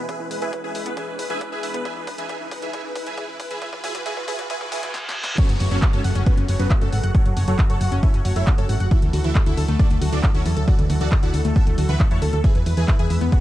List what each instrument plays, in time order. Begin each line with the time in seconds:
Already playing: analog synth pad B2 E3 G#3 E4 G#4, riser
0.09 synth pluck E3, supersaw synth G#4 B4 E5 G#5, kick, closed hi-hat
0.20 fm bass E2, synth pluck E3, supersaw synth B4
0.31 fm bass E2, supersaw synth B4, synth pluck B4, open hi-hat
0.42 fm bass E2, synth pluck E3, supersaw synth G#4 B4 E5 G#5, closed hi-hat
0.53 synth pluck E4, supersaw synth B4, kick, closed hi-hat
0.64 fm bass E2, supersaw synth G#4 B4 E5 G#5, synth pluck G#4
0.75 fm bass E2, supersaw synth B4, synth pluck E5, open hi-hat
0.86 fm bass E2, synth pluck B3, supersaw synth B4, closed hi-hat
0.97 synth pluck E3, supersaw synth G#4 B4 E5 G#5, kick, closed hi-hat
1.08 fm bass E2, synth pluck E3, supersaw synth B4
1.19 fm bass E2, synth pluck B4, supersaw synth B4, open hi-hat
1.30 fm bass E2, synth pluck E3, supersaw synth G#4 B4 E5 G#5, closed hi-hat
1.41 synth pluck E4, supersaw synth B4, kick, closed hi-hat
1.52 fm bass E2, supersaw synth G#4 B4 E5 G#5, synth pluck G#4
1.63 fm bass E1, supersaw synth B4, synth pluck E5, open hi-hat
1.74 fm bass E2, synth pluck B3, supersaw synth B4, closed hi-hat
1.85 analog synth pad C#3 E4, synth pluck E3, supersaw synth G#4 B4 E5 G#5, kick, closed hi-hat
1.96 fm bass C#2, synth pluck E3, supersaw synth B4
2.07 fm bass C#2, synth pluck B4, supersaw synth B4, kick, open hi-hat
2.18 fm bass C#2, synth pluck E3, supersaw synth G#4 B4 E5 G#5, closed hi-hat
2.29 synth pluck E3, supersaw synth G#4 B4 E5 G#5, kick, closed hi-hat
2.40 fm bass C#2, synth pluck E3, supersaw synth B4
2.51 fm bass C#2, synth pluck B4, supersaw synth B4, kick, open hi-hat
2.62 fm bass C#2, synth pluck E3, supersaw synth G#4 B4 E5 G#5, closed hi-hat
2.73 synth pluck E3, supersaw synth G#4 B4 E5 G#5, kick, closed hi-hat
2.84 fm bass C#2, synth pluck E3, supersaw synth B4
2.95 fm bass C#2, synth pluck B4, supersaw synth B4, kick, open hi-hat
3.06 fm bass C#2, synth pluck E3, supersaw synth G#4 B4 E5 G#5, closed hi-hat
3.17 synth pluck E3, supersaw synth G#4 B4 E5 G#5, kick, closed hi-hat
3.29 fm bass C#2, synth pluck E3, supersaw synth B4
3.40 fm bass G#1, supersaw synth B4, synth pluck B4, kick, open hi-hat
3.51 fm bass C#2, synth pluck E3, supersaw synth G#4 B4 E5 G#5, closed hi-hat
3.62 synth pluck E3, analog synth pad F#4, supersaw synth G#4 B4 E5 G#5, kick, closed hi-hat
3.73 fm bass C#2, synth pluck E3, supersaw synth B4, kick
3.84 fm bass C#2, synth pluck E3, supersaw synth G#4 B4 E5 G#5, kick, open hi-hat
3.95 fm bass C#2, synth pluck E3, supersaw synth B4, kick, closed hi-hat
4.06 synth pluck E3, supersaw synth G#4 B4 E5 G#5, kick, closed hi-hat
4.17 fm bass C#2, synth pluck E3, supersaw synth B4, kick
4.28 fm bass C#2, synth pluck E3, supersaw synth G#4 B4 E5 G#5, kick, open hi-hat
4.39 fm bass C#2, synth pluck E3, supersaw synth B4, kick, closed hi-hat
4.50 synth pluck E3, supersaw synth G#4 B4 E5 G#5, kick, closed hi-hat, reverse cymbal
4.61 fm bass C#2, synth pluck E3, supersaw synth B4, kick
4.72 fm bass C#2, synth pluck E3, supersaw synth G#4 B4 E5 G#5, kick, open hi-hat
4.83 fm bass C#2, synth pluck E3, supersaw synth B4, kick, closed hi-hat
4.94 snare
5.09 snare
5.24 snare
5.38 analog synth pad C#3 F#3 A3 F#4 A4, synth pluck F#3, supersaw synth C#4 F#4 A4 C#5, kick, closed hi-hat, crash, downlifter
5.49 fm bass F#1, synth pluck F#3, supersaw synth F#4, closed hi-hat
5.60 fm bass F#1, supersaw synth F#4, synth pluck C#5, open hi-hat
5.71 fm bass F#1, synth pluck F#3, supersaw synth C#4 F#4 A4 C#5, closed hi-hat
5.82 supersaw synth F#4, kick, clap, closed hi-hat
5.93 fm bass F#1, supersaw synth C#4 F#4 A4 C#5, synth pluck A4, closed hi-hat
6.04 fm bass F#1, supersaw synth F#4, synth pluck F#5, open hi-hat
6.15 fm bass F#1, synth pluck C#4, supersaw synth F#4, closed hi-hat
6.26 supersaw synth B3 C#4 F#4 B4, synth pluck C#4, kick, closed hi-hat
6.37 fm bass F#1, synth pluck C#4, supersaw synth F#4, closed hi-hat
6.48 fm bass F#1, supersaw synth F#4, synth pluck C#5, open hi-hat
6.59 fm bass F#1, synth pluck F#3, supersaw synth B3 C#4 F#4 B4, closed hi-hat
6.70 synth pluck A3, supersaw synth F#4, kick, clap, closed hi-hat
6.81 fm bass F#1, supersaw synth A3 C#4 F#4 A4, synth pluck A4, closed hi-hat
6.93 fm bass G#1, supersaw synth F#4, synth pluck F#5, open hi-hat
7.04 fm bass F#1, supersaw synth F#4, synth pluck F#5, closed hi-hat
7.14 synth pluck F#3, supersaw synth F#4 A4 C#5 F#5, kick, closed hi-hat
7.26 fm bass F#1, synth pluck F#3, supersaw synth F#4, closed hi-hat
7.37 fm bass F#1, supersaw synth F#4, synth pluck C#5, open hi-hat
7.48 fm bass F#1, synth pluck F#3, supersaw synth F#4 A4 C#5 F#5, closed hi-hat
7.59 supersaw synth F#4, synth pluck F#4, kick, clap, closed hi-hat
7.70 fm bass F#1, supersaw synth F#4 A4 C#5 F#5, synth pluck A4, closed hi-hat
7.81 fm bass F#1, supersaw synth F#4, synth pluck F#5, open hi-hat
7.92 fm bass F#1, synth pluck C#4, supersaw synth F#4, closed hi-hat
8.03 synth pluck C#4, supersaw synth E4 A4 C#5 E5, kick, closed hi-hat
8.14 fm bass F#1, synth pluck C#4, supersaw synth F#4, closed hi-hat
8.25 fm bass F#1, supersaw synth F#4, synth pluck C#5, open hi-hat
8.36 fm bass F#1, synth pluck F#3, supersaw synth E4 A4 C#5 E5, closed hi-hat
8.47 synth pluck A3, supersaw synth F#4, kick, clap, closed hi-hat
8.58 fm bass F#1, supersaw synth C#4 F#4 A4 C#5, synth pluck A4, closed hi-hat
8.69 fm bass G#1, supersaw synth F#4, synth pluck F#5, open hi-hat
8.80 fm bass F#1, supersaw synth F#4, synth pluck F#5, closed hi-hat
8.91 analog synth pad D3 F#3 E4, synth pluck E3, supersaw synth E4 F#4 A4 E5, kick, closed hi-hat
9.02 fm bass D2, synth pluck E3, supersaw synth A4, closed hi-hat
9.13 fm bass D2, synth pluck F#4, supersaw synth A4, open hi-hat
9.24 fm bass D2, synth pluck E3, supersaw synth E4 F#4 A4 E5, closed hi-hat
9.35 synth pluck D4, supersaw synth A4, kick, clap, closed hi-hat
9.46 fm bass D2, supersaw synth E4 F#4 A4 E5, synth pluck E4, closed hi-hat
9.57 fm bass D2, supersaw synth A4, synth pluck A4, open hi-hat
9.68 fm bass D2, synth pluck A3, supersaw synth A4, closed hi-hat
9.79 synth pluck A3, supersaw synth D4 F#4 A4 D5, kick, closed hi-hat
9.90 fm bass D2, synth pluck A3, supersaw synth A4, closed hi-hat
10.01 fm bass D2, synth pluck F#4, supersaw synth A4, open hi-hat
10.12 fm bass D2, synth pluck E3, supersaw synth D4 F#4 A4 D5, closed hi-hat
10.24 synth pluck F#3, supersaw synth A4, kick, clap, closed hi-hat
10.34 fm bass D2, supersaw synth C#4 F#4 A4 C#5, synth pluck E4, closed hi-hat
10.46 fm bass E2, supersaw synth A4, synth pluck A4, open hi-hat
10.57 fm bass D2, synth pluck A4, supersaw synth A4, closed hi-hat
10.68 synth pluck E3, supersaw synth F#4 A4 D5 F#5, kick, closed hi-hat
10.79 fm bass D2, synth pluck E3, supersaw synth A4, closed hi-hat
10.90 fm bass D2, synth pluck F#4, supersaw synth A4, open hi-hat
11.01 fm bass D2, synth pluck E3, supersaw synth F#4 A4 D5 F#5, closed hi-hat
11.12 synth pluck D4, supersaw synth A4, kick, clap, closed hi-hat
11.23 fm bass D2, synth pluck E4, supersaw synth F#4 A4 D5 F#5, closed hi-hat
11.34 fm bass D2, supersaw synth A4, synth pluck A4, open hi-hat
11.45 fm bass D2, synth pluck A3, supersaw synth A4, closed hi-hat
11.56 synth pluck A3, supersaw synth A4 E5 F#5 A5, kick, closed hi-hat
11.67 fm bass D2, synth pluck A3, supersaw synth A4, closed hi-hat
11.78 fm bass D2, synth pluck F#4, supersaw synth A4, open hi-hat
11.89 fm bass D2, synth pluck E3, supersaw synth B4 E5 F#5 B5, closed hi-hat
12.00 synth pluck F#3, supersaw synth A4, kick, clap, closed hi-hat
12.11 fm bass E2, synth pluck E4, supersaw synth C#5 F#5 A5 C#6, closed hi-hat
12.22 fm bass D2, supersaw synth A4, synth pluck A4, open hi-hat
12.33 fm bass D2, synth pluck A4, supersaw synth A4, closed hi-hat
12.44 analog synth pad B2 E3 G#3 G#4, synth pluck E3, supersaw synth G#4 B4 E5 G#5, kick, closed hi-hat
12.55 fm bass E2, synth pluck E3, supersaw synth B4, closed hi-hat
12.66 fm bass E2, supersaw synth B4, synth pluck B4, open hi-hat
12.77 fm bass E2, synth pluck E3, supersaw synth G#4 B4 E5 G#5, closed hi-hat
12.88 synth pluck E4, kick, clap, closed hi-hat
12.99 fm bass E2, synth pluck G#4, supersaw synth G#4 B4 E5 G#5, closed hi-hat
13.10 fm bass E2, supersaw synth B4, synth pluck E5, open hi-hat
13.21 fm bass E2, synth pluck B3, supersaw synth B4, closed hi-hat
13.32 synth pluck B3, supersaw synth F#4 G#4 B4 F#5, kick, closed hi-hat